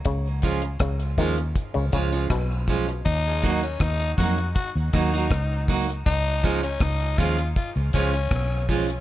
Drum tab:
HH |x-xxxxoxx-xxx-xx|x-xxxxxxx-xxx-ox|x-xxxxxxx-xxx-ox|
SD |----r-------r---|----r-----r-r---|----r-------r---|
BD |o-o-o-o-o-o-o-o-|o-o-o-o-o-o-o-o-|o-o-o-o-o-o-o-o-|